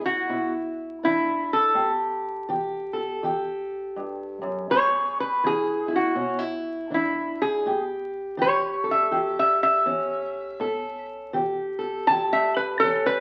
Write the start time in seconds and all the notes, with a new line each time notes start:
Already playing: E3 G#4
0.01 E4
0.06 F#4
0.29 B2 E4
1.03 E3 D4 E4
1.53 A4
1.75 A2 G4
2.48 E3 G4
2.93 A4
3.23 E3 G4
3.96 G2
4.42 F#2
4.70 E2 G#4 C#5
5.20 B4
5.44 E3 E4 G#4
5.88 E4
5.96 F#4
6.15 B2 C#4
6.39 E4
6.90 E3 D4
6.94 E4
7.42 G#4
7.66 A2 G4
8.37 E3 G4
8.42 C#5
8.84 A4
8.91 E5
9.11 E3 G4
9.39 E5
9.63 E5
9.86 E3 C#4
10.60 A2 A4
11.33 E3 G4
11.79 A4
12.07 E3 G4 A5
12.33 E5
12.56 B4
12.80 E3 C#4 A4
13.06 B4